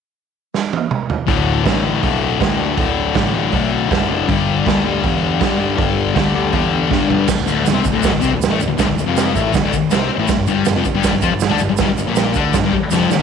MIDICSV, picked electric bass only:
0, 0, Header, 1, 3, 480
1, 0, Start_track
1, 0, Tempo, 375235
1, 1631, Time_signature, 4, 2, 24, 8
1, 16914, End_track
2, 0, Start_track
2, 0, Title_t, "Picked electric bass"
2, 0, Program_c, 0, 34
2, 1640, Note_on_c, 0, 26, 92
2, 2067, Note_off_c, 0, 26, 0
2, 2118, Note_on_c, 0, 33, 90
2, 2547, Note_off_c, 0, 33, 0
2, 2604, Note_on_c, 0, 35, 88
2, 3030, Note_off_c, 0, 35, 0
2, 3079, Note_on_c, 0, 38, 77
2, 3507, Note_off_c, 0, 38, 0
2, 3556, Note_on_c, 0, 26, 77
2, 3986, Note_off_c, 0, 26, 0
2, 4043, Note_on_c, 0, 33, 85
2, 4470, Note_off_c, 0, 33, 0
2, 4521, Note_on_c, 0, 35, 90
2, 4949, Note_off_c, 0, 35, 0
2, 5006, Note_on_c, 0, 30, 79
2, 5432, Note_off_c, 0, 30, 0
2, 5480, Note_on_c, 0, 31, 96
2, 5910, Note_off_c, 0, 31, 0
2, 5970, Note_on_c, 0, 38, 87
2, 6396, Note_off_c, 0, 38, 0
2, 6447, Note_on_c, 0, 40, 84
2, 6874, Note_off_c, 0, 40, 0
2, 6921, Note_on_c, 0, 43, 83
2, 7352, Note_off_c, 0, 43, 0
2, 7399, Note_on_c, 0, 31, 85
2, 7831, Note_off_c, 0, 31, 0
2, 7880, Note_on_c, 0, 38, 84
2, 8312, Note_off_c, 0, 38, 0
2, 8354, Note_on_c, 0, 40, 86
2, 8790, Note_off_c, 0, 40, 0
2, 8845, Note_on_c, 0, 43, 69
2, 9276, Note_off_c, 0, 43, 0
2, 9451, Note_on_c, 0, 26, 77
2, 9558, Note_off_c, 0, 26, 0
2, 9574, Note_on_c, 0, 26, 82
2, 9792, Note_off_c, 0, 26, 0
2, 9818, Note_on_c, 0, 26, 79
2, 9922, Note_off_c, 0, 26, 0
2, 9941, Note_on_c, 0, 36, 84
2, 10038, Note_off_c, 0, 36, 0
2, 10046, Note_on_c, 0, 26, 81
2, 10156, Note_off_c, 0, 26, 0
2, 10173, Note_on_c, 0, 26, 94
2, 10392, Note_off_c, 0, 26, 0
2, 10419, Note_on_c, 0, 26, 79
2, 10523, Note_off_c, 0, 26, 0
2, 10537, Note_on_c, 0, 36, 88
2, 10633, Note_off_c, 0, 36, 0
2, 10641, Note_on_c, 0, 26, 73
2, 10866, Note_off_c, 0, 26, 0
2, 10879, Note_on_c, 0, 33, 90
2, 10993, Note_off_c, 0, 33, 0
2, 11009, Note_on_c, 0, 26, 75
2, 11119, Note_off_c, 0, 26, 0
2, 11131, Note_on_c, 0, 26, 83
2, 11240, Note_off_c, 0, 26, 0
2, 11249, Note_on_c, 0, 26, 91
2, 11347, Note_off_c, 0, 26, 0
2, 11354, Note_on_c, 0, 26, 80
2, 11464, Note_off_c, 0, 26, 0
2, 11471, Note_on_c, 0, 26, 75
2, 11589, Note_off_c, 0, 26, 0
2, 11610, Note_on_c, 0, 29, 84
2, 11943, Note_off_c, 0, 29, 0
2, 11969, Note_on_c, 0, 33, 101
2, 12191, Note_off_c, 0, 33, 0
2, 12209, Note_on_c, 0, 26, 71
2, 12310, Note_off_c, 0, 26, 0
2, 12318, Note_on_c, 0, 26, 86
2, 12433, Note_off_c, 0, 26, 0
2, 12673, Note_on_c, 0, 36, 87
2, 12902, Note_off_c, 0, 36, 0
2, 13022, Note_on_c, 0, 33, 93
2, 13145, Note_off_c, 0, 33, 0
2, 13272, Note_on_c, 0, 31, 74
2, 13380, Note_off_c, 0, 31, 0
2, 13388, Note_on_c, 0, 31, 92
2, 13619, Note_off_c, 0, 31, 0
2, 13632, Note_on_c, 0, 31, 77
2, 13731, Note_off_c, 0, 31, 0
2, 13738, Note_on_c, 0, 29, 90
2, 13862, Note_off_c, 0, 29, 0
2, 13883, Note_on_c, 0, 31, 83
2, 13985, Note_off_c, 0, 31, 0
2, 13992, Note_on_c, 0, 31, 100
2, 14209, Note_off_c, 0, 31, 0
2, 14216, Note_on_c, 0, 31, 82
2, 14341, Note_off_c, 0, 31, 0
2, 14361, Note_on_c, 0, 41, 86
2, 14450, Note_off_c, 0, 41, 0
2, 14457, Note_on_c, 0, 31, 74
2, 14692, Note_off_c, 0, 31, 0
2, 14708, Note_on_c, 0, 38, 102
2, 14823, Note_off_c, 0, 38, 0
2, 14831, Note_on_c, 0, 31, 81
2, 14947, Note_off_c, 0, 31, 0
2, 14955, Note_on_c, 0, 31, 81
2, 15069, Note_off_c, 0, 31, 0
2, 15084, Note_on_c, 0, 31, 79
2, 15177, Note_off_c, 0, 31, 0
2, 15184, Note_on_c, 0, 31, 77
2, 15303, Note_off_c, 0, 31, 0
2, 15310, Note_on_c, 0, 31, 72
2, 15426, Note_off_c, 0, 31, 0
2, 15435, Note_on_c, 0, 34, 92
2, 15771, Note_off_c, 0, 34, 0
2, 15808, Note_on_c, 0, 38, 86
2, 16026, Note_off_c, 0, 38, 0
2, 16041, Note_on_c, 0, 31, 76
2, 16151, Note_off_c, 0, 31, 0
2, 16157, Note_on_c, 0, 31, 88
2, 16268, Note_off_c, 0, 31, 0
2, 16514, Note_on_c, 0, 29, 82
2, 16737, Note_off_c, 0, 29, 0
2, 16914, End_track
3, 0, Start_track
3, 0, Title_t, "Muted picked electric bass strokes"
3, 12917, Note_on_c, 9, 29, 41
3, 13045, Note_off_c, 9, 29, 0
3, 16282, Note_on_c, 9, 29, 34
3, 16410, Note_off_c, 9, 29, 0
3, 16758, Note_on_c, 9, 29, 37
3, 16886, Note_off_c, 9, 29, 0
3, 16914, End_track
0, 0, End_of_file